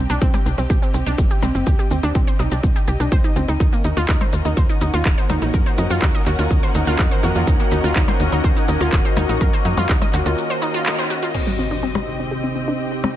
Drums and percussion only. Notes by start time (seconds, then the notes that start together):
0.10 shaker
0.22 kick, shaker
0.34 percussion blips, shaker
0.46 shaker
0.58 shaker
0.70 kick, shaker
0.82 shaker
0.94 shaker
1.06 shaker
1.18 kick, shaker
1.31 shaker
1.43 percussion blips, shaker
1.55 shaker
1.67 kick, shaker
1.79 shaker
1.91 shaker
2.03 shaker
2.15 kick, shaker
2.27 shaker
2.39 shaker
2.52 shaker
2.63 kick, shaker
2.76 shaker
2.88 shaker
3.00 shaker
3.12 kick, shaker
3.24 shaker
3.36 shaker
3.48 shaker
3.60 kick, shaker
3.73 shaker
3.84 closed hi-hat, shaker
3.97 shaker
4.09 kick, clap, shaker
4.21 percussion blips, shaker
4.33 closed hi-hat, shaker
4.45 shaker
4.57 kick, shaker
4.69 shaker
4.81 closed hi-hat, shaker
4.94 shaker
5.05 kick, clap, shaker
5.18 shaker
5.30 closed hi-hat, percussion blips, shaker
5.42 shaker
5.54 kick, shaker
5.66 shaker
5.78 closed hi-hat, shaker
5.90 shaker
6.02 kick, clap, shaker
6.15 shaker
6.26 clap, closed hi-hat, shaker
6.39 shaker
6.51 kick, shaker
6.63 shaker
6.75 closed hi-hat, shaker
6.87 shaker
6.99 kick, clap, shaker
7.11 shaker
7.23 closed hi-hat, shaker
7.36 shaker
7.47 kick, shaker
7.60 shaker
7.72 closed hi-hat, shaker
7.84 shaker
7.96 kick, clap, shaker
8.08 percussion blips, shaker
8.20 closed hi-hat, shaker
8.32 shaker
8.44 kick, shaker
8.56 shaker
8.68 closed hi-hat, shaker
8.81 shaker
8.93 kick, clap, shaker
9.05 shaker
9.17 closed hi-hat, percussion blips, shaker
9.29 shaker
9.41 kick, shaker
9.53 shaker
9.65 closed hi-hat, shaker
9.77 percussion blips, shaker
9.89 kick, clap, shaker
10.02 percussion blips, shaker
10.14 clap, closed hi-hat, shaker
10.26 shaker
10.38 shaker
10.50 shaker
10.62 closed hi-hat, shaker
10.74 shaker
10.86 clap, shaker
10.98 shaker
11.10 closed hi-hat, shaker
11.23 shaker
11.34 crash
11.95 percussion blips
13.04 percussion blips